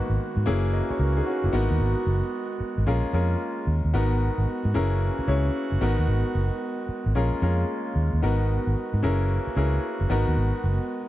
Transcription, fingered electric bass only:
0, 0, Header, 1, 3, 480
1, 0, Start_track
1, 0, Key_signature, 5, "minor"
1, 0, Tempo, 535714
1, 1609, Time_signature, 4, 2, 24, 8
1, 9930, End_track
2, 0, Start_track
2, 0, Title_t, "Fingered electric bass"
2, 0, Program_c, 0, 33
2, 86, Note_on_c, 0, 32, 79
2, 151, Note_off_c, 0, 32, 0
2, 328, Note_on_c, 0, 44, 104
2, 412, Note_on_c, 0, 30, 104
2, 425, Note_off_c, 0, 44, 0
2, 721, Note_off_c, 0, 30, 0
2, 891, Note_on_c, 0, 37, 95
2, 1077, Note_off_c, 0, 37, 0
2, 1288, Note_on_c, 0, 30, 76
2, 1352, Note_off_c, 0, 30, 0
2, 1371, Note_on_c, 0, 32, 90
2, 1493, Note_off_c, 0, 32, 0
2, 1529, Note_on_c, 0, 39, 87
2, 1592, Note_off_c, 0, 39, 0
2, 1611, Note_on_c, 0, 32, 97
2, 1733, Note_off_c, 0, 32, 0
2, 1851, Note_on_c, 0, 30, 98
2, 1973, Note_off_c, 0, 30, 0
2, 2488, Note_on_c, 0, 32, 99
2, 2552, Note_off_c, 0, 32, 0
2, 2570, Note_on_c, 0, 34, 102
2, 2692, Note_off_c, 0, 34, 0
2, 2808, Note_on_c, 0, 41, 92
2, 2995, Note_off_c, 0, 41, 0
2, 3288, Note_on_c, 0, 39, 89
2, 3411, Note_off_c, 0, 39, 0
2, 3446, Note_on_c, 0, 39, 81
2, 3511, Note_off_c, 0, 39, 0
2, 3528, Note_on_c, 0, 32, 96
2, 3838, Note_off_c, 0, 32, 0
2, 3926, Note_on_c, 0, 32, 79
2, 3990, Note_off_c, 0, 32, 0
2, 4167, Note_on_c, 0, 44, 108
2, 4250, Note_on_c, 0, 30, 94
2, 4263, Note_off_c, 0, 44, 0
2, 4559, Note_off_c, 0, 30, 0
2, 4729, Note_on_c, 0, 37, 93
2, 4916, Note_off_c, 0, 37, 0
2, 5125, Note_on_c, 0, 30, 83
2, 5190, Note_off_c, 0, 30, 0
2, 5210, Note_on_c, 0, 32, 93
2, 5332, Note_off_c, 0, 32, 0
2, 5365, Note_on_c, 0, 39, 84
2, 5430, Note_off_c, 0, 39, 0
2, 5448, Note_on_c, 0, 32, 102
2, 5571, Note_off_c, 0, 32, 0
2, 5689, Note_on_c, 0, 30, 101
2, 5812, Note_off_c, 0, 30, 0
2, 6327, Note_on_c, 0, 32, 88
2, 6391, Note_off_c, 0, 32, 0
2, 6410, Note_on_c, 0, 34, 98
2, 6533, Note_off_c, 0, 34, 0
2, 6649, Note_on_c, 0, 41, 95
2, 6836, Note_off_c, 0, 41, 0
2, 7129, Note_on_c, 0, 39, 86
2, 7252, Note_off_c, 0, 39, 0
2, 7287, Note_on_c, 0, 39, 85
2, 7351, Note_off_c, 0, 39, 0
2, 7371, Note_on_c, 0, 32, 96
2, 7680, Note_off_c, 0, 32, 0
2, 7769, Note_on_c, 0, 32, 82
2, 7832, Note_off_c, 0, 32, 0
2, 8007, Note_on_c, 0, 44, 109
2, 8090, Note_on_c, 0, 30, 102
2, 8103, Note_off_c, 0, 44, 0
2, 8399, Note_off_c, 0, 30, 0
2, 8570, Note_on_c, 0, 37, 89
2, 8757, Note_off_c, 0, 37, 0
2, 8967, Note_on_c, 0, 30, 89
2, 9031, Note_off_c, 0, 30, 0
2, 9048, Note_on_c, 0, 32, 96
2, 9171, Note_off_c, 0, 32, 0
2, 9208, Note_on_c, 0, 39, 83
2, 9272, Note_off_c, 0, 39, 0
2, 9289, Note_on_c, 0, 32, 101
2, 9412, Note_off_c, 0, 32, 0
2, 9531, Note_on_c, 0, 30, 91
2, 9653, Note_off_c, 0, 30, 0
2, 9930, End_track
3, 0, Start_track
3, 0, Title_t, "Muted fingered electric bass strokes"
3, 170, Note_on_c, 9, 29, 46
3, 260, Note_off_c, 9, 29, 0
3, 809, Note_on_c, 9, 29, 45
3, 898, Note_off_c, 9, 29, 0
3, 2332, Note_on_c, 9, 29, 49
3, 2421, Note_off_c, 9, 29, 0
3, 4009, Note_on_c, 9, 29, 50
3, 4099, Note_off_c, 9, 29, 0
3, 4648, Note_on_c, 9, 29, 50
3, 4738, Note_off_c, 9, 29, 0
3, 6171, Note_on_c, 9, 29, 50
3, 6261, Note_off_c, 9, 29, 0
3, 7851, Note_on_c, 9, 29, 44
3, 7941, Note_off_c, 9, 29, 0
3, 8487, Note_on_c, 9, 29, 46
3, 8577, Note_off_c, 9, 29, 0
3, 9930, End_track
0, 0, End_of_file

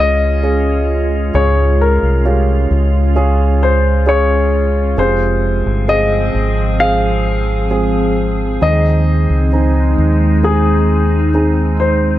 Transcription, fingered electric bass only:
0, 0, Header, 1, 2, 480
1, 0, Start_track
1, 0, Tempo, 909091
1, 709, Time_signature, 4, 2, 24, 8
1, 6435, End_track
2, 0, Start_track
2, 0, Title_t, "Fingered electric bass"
2, 0, Program_c, 0, 33
2, 0, Note_on_c, 0, 37, 61
2, 688, Note_off_c, 0, 37, 0
2, 709, Note_on_c, 0, 37, 82
2, 1048, Note_off_c, 0, 37, 0
2, 1069, Note_on_c, 0, 36, 61
2, 1408, Note_off_c, 0, 36, 0
2, 1429, Note_on_c, 0, 37, 63
2, 2608, Note_off_c, 0, 37, 0
2, 2628, Note_on_c, 0, 29, 83
2, 2967, Note_off_c, 0, 29, 0
2, 2989, Note_on_c, 0, 31, 65
2, 3328, Note_off_c, 0, 31, 0
2, 3349, Note_on_c, 0, 32, 62
2, 4528, Note_off_c, 0, 32, 0
2, 4550, Note_on_c, 0, 39, 78
2, 4889, Note_off_c, 0, 39, 0
2, 4909, Note_on_c, 0, 37, 64
2, 5248, Note_off_c, 0, 37, 0
2, 5270, Note_on_c, 0, 39, 71
2, 6435, Note_off_c, 0, 39, 0
2, 6435, End_track
0, 0, End_of_file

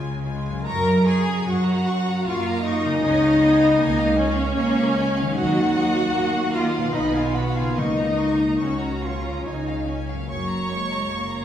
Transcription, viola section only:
0, 0, Header, 1, 2, 480
1, 0, Start_track
1, 0, Key_signature, 6, "major"
1, 0, Tempo, 842697
1, 373, Tempo, 797872
1, 374, Time_signature, 3, 2, 24, 8
1, 1333, Tempo, 765306
1, 2773, Tempo, 826446
1, 3253, Tempo, 784314
1, 4213, Tempo, 836820
1, 6133, Tempo, 794702
1, 6833, End_track
2, 0, Start_track
2, 0, Title_t, "Viola section"
2, 0, Program_c, 0, 48
2, 0, Note_on_c, 0, 56, 32
2, 0, Note_on_c, 0, 65, 32
2, 137, Note_off_c, 0, 56, 0
2, 137, Note_off_c, 0, 65, 0
2, 146, Note_on_c, 0, 65, 43
2, 147, Note_on_c, 0, 56, 31
2, 374, Note_off_c, 0, 65, 0
2, 375, Note_off_c, 0, 56, 0
2, 382, Note_on_c, 0, 70, 81
2, 603, Note_off_c, 0, 70, 0
2, 630, Note_on_c, 0, 68, 76
2, 864, Note_off_c, 0, 68, 0
2, 871, Note_on_c, 0, 66, 74
2, 1331, Note_off_c, 0, 66, 0
2, 1345, Note_on_c, 0, 65, 79
2, 1577, Note_on_c, 0, 63, 88
2, 1582, Note_off_c, 0, 65, 0
2, 2516, Note_off_c, 0, 63, 0
2, 2537, Note_on_c, 0, 61, 94
2, 3240, Note_off_c, 0, 61, 0
2, 3254, Note_on_c, 0, 66, 98
2, 3951, Note_off_c, 0, 66, 0
2, 3972, Note_on_c, 0, 65, 79
2, 4214, Note_on_c, 0, 63, 70
2, 4216, Note_off_c, 0, 65, 0
2, 4330, Note_off_c, 0, 63, 0
2, 4335, Note_on_c, 0, 65, 63
2, 4450, Note_off_c, 0, 65, 0
2, 4454, Note_on_c, 0, 66, 63
2, 4569, Note_off_c, 0, 66, 0
2, 4576, Note_on_c, 0, 65, 58
2, 4689, Note_off_c, 0, 65, 0
2, 4690, Note_on_c, 0, 63, 64
2, 5174, Note_off_c, 0, 63, 0
2, 5175, Note_on_c, 0, 61, 49
2, 5898, Note_off_c, 0, 61, 0
2, 6137, Note_on_c, 0, 73, 71
2, 6830, Note_off_c, 0, 73, 0
2, 6833, End_track
0, 0, End_of_file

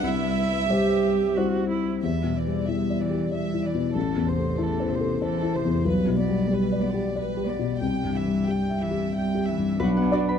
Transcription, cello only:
0, 0, Header, 1, 2, 480
1, 0, Start_track
1, 0, Key_signature, 1, "minor"
1, 0, Tempo, 666667
1, 23, Time_signature, 3, 2, 24, 8
1, 1463, Tempo, 640342
1, 5303, Tempo, 659341
1, 7656, End_track
2, 0, Start_track
2, 0, Title_t, "Cello"
2, 0, Program_c, 0, 42
2, 23, Note_on_c, 0, 64, 50
2, 458, Note_off_c, 0, 64, 0
2, 505, Note_on_c, 0, 67, 70
2, 983, Note_on_c, 0, 66, 60
2, 994, Note_off_c, 0, 67, 0
2, 1222, Note_off_c, 0, 66, 0
2, 1226, Note_on_c, 0, 64, 47
2, 1458, Note_off_c, 0, 64, 0
2, 1465, Note_on_c, 0, 55, 31
2, 1705, Note_on_c, 0, 52, 30
2, 1716, Note_off_c, 0, 55, 0
2, 1947, Note_on_c, 0, 55, 32
2, 1958, Note_off_c, 0, 52, 0
2, 2190, Note_on_c, 0, 52, 29
2, 2201, Note_off_c, 0, 55, 0
2, 2422, Note_off_c, 0, 52, 0
2, 2426, Note_on_c, 0, 55, 32
2, 2663, Note_on_c, 0, 52, 29
2, 2674, Note_off_c, 0, 55, 0
2, 2896, Note_off_c, 0, 52, 0
2, 2901, Note_on_c, 0, 52, 31
2, 3141, Note_on_c, 0, 48, 35
2, 3153, Note_off_c, 0, 52, 0
2, 3383, Note_on_c, 0, 52, 39
2, 3394, Note_off_c, 0, 48, 0
2, 3621, Note_on_c, 0, 48, 35
2, 3632, Note_off_c, 0, 52, 0
2, 3856, Note_off_c, 0, 48, 0
2, 3860, Note_on_c, 0, 52, 39
2, 4103, Note_on_c, 0, 48, 36
2, 4114, Note_off_c, 0, 52, 0
2, 4336, Note_off_c, 0, 48, 0
2, 4341, Note_on_c, 0, 55, 38
2, 4573, Note_on_c, 0, 59, 42
2, 4584, Note_off_c, 0, 55, 0
2, 4810, Note_on_c, 0, 55, 45
2, 4821, Note_off_c, 0, 59, 0
2, 5051, Note_on_c, 0, 59, 40
2, 5062, Note_off_c, 0, 55, 0
2, 5294, Note_off_c, 0, 59, 0
2, 5298, Note_on_c, 0, 55, 41
2, 5533, Note_on_c, 0, 59, 35
2, 5544, Note_off_c, 0, 55, 0
2, 5777, Note_off_c, 0, 59, 0
2, 5786, Note_on_c, 0, 55, 35
2, 6018, Note_on_c, 0, 52, 33
2, 6029, Note_off_c, 0, 55, 0
2, 6266, Note_on_c, 0, 55, 38
2, 6277, Note_off_c, 0, 52, 0
2, 6508, Note_on_c, 0, 52, 34
2, 6519, Note_off_c, 0, 55, 0
2, 6741, Note_off_c, 0, 52, 0
2, 6745, Note_on_c, 0, 55, 34
2, 6994, Note_on_c, 0, 52, 35
2, 7005, Note_off_c, 0, 55, 0
2, 7223, Note_off_c, 0, 52, 0
2, 7227, Note_on_c, 0, 62, 58
2, 7656, Note_off_c, 0, 62, 0
2, 7656, End_track
0, 0, End_of_file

